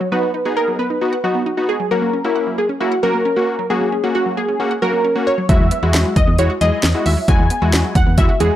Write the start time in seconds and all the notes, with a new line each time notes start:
0.01 F#3
0.12 F#3 B3 D#4 F#4 B4
0.23 B3
0.34 D#4
0.45 B3 D#4 F#4 G#4
0.57 A#4 F#5
0.68 F#3
0.79 B3 B4
0.90 D#4
1.01 B3 D#4 F#4
1.13 F#5
1.24 F#3 B3 D#4 F#4
1.35 B3
1.46 D#4
1.57 B3 D#4 F#4
1.69 G#4
1.80 F#3
1.91 F#3 A#3 C#4 F#4 A#4
2.02 A#3
2.13 C#4
2.24 A#3 C#4 E4 F#4
2.36 F#5
2.47 F#3
2.58 A#3 G#4
2.69 C#4
2.80 A#3 C#4 E4 F#4
2.92 F#5
3.03 F#3 A#3 C#4 F#4 A#4
3.14 A#3
3.25 C#4
3.36 A#3 C#4 F#4
3.59 F#3
3.70 F#3 A#3 C#4 F#4 G#4
3.81 A#3
3.92 C#4
4.04 A#3 C#4 F#4
4.15 F#4 F#5
4.26 F#3
4.37 A#3 G#4
4.49 C#4
4.60 A#3 C#4 F#4
4.71 F#5
4.82 F#3 A#3 C#4 F#4 A#4
4.93 A#3
5.04 C#4
5.16 A#3 C#4 F#4
5.27 C#5
5.38 F#3
5.49 E2 F#3 G#3 E4 F#4 E5, kick, closed hi-hat
5.60 E2 G#3
5.71 B3, closed hi-hat
5.83 E2 G#3 E4 F#4
5.94 E2 F#4, snare, closed hi-hat
6.05 F#3
6.16 E2 G#3 D#5, kick, closed hi-hat
6.27 E2 B3
6.39 E2 G#3 E4 F#4 C#5, closed hi-hat
6.50 F#4
6.61 E2 F#3 G#3 E4 G#4 D#5, closed hi-hat
6.72 G#3
6.83 E2 B3, snare, closed hi-hat
6.95 G#3 E4 F#4
7.06 D#2 E5, open hi-hat
7.17 F#3
7.28 E2 F#3 G#3 E4 F#4 G#5, kick, closed hi-hat
7.39 E2 G#3
7.50 B3, closed hi-hat
7.62 E2 G#3 E4 F#4
7.73 E2 F#4, snare, closed hi-hat
7.84 F#3
7.95 E2 G#3 F#5, kick, closed hi-hat
8.06 E2 B3
8.18 E2 G#3 E4 F#4 E5, kick, closed hi-hat
8.29 F#4
8.40 E2 F#3 G#3 E4 F#4 G#4, closed hi-hat
8.51 G#3